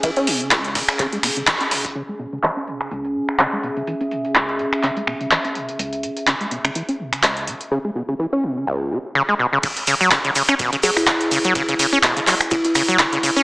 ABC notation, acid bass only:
X:1
M:4/4
L:1/16
Q:"Swing 16ths" 1/4=125
K:C#m
V:1 name="Acid bass" clef=bass
E, C B,, C, C,,2 C, z C, G, B,, C, E, C B,, C, | C, G, B,, C, E, C B,, C, C,,2 C, z C, G, B,, C, | E, C B,, C, C,,2 C, z C, G, B,, C, E, C B,, C, | C,,2 C, z C, G, B,, C, E, C B,, C, C,,2 C, z |
C, G, B,, C, E, C B,, C, C,,2 C, z C, G, B,, C, | C, z C, F, C, C, C, C B,, C, F, z C, z C, F, | C, C, C, C B,, C, F, z C, z C, F, C, C, C, C |]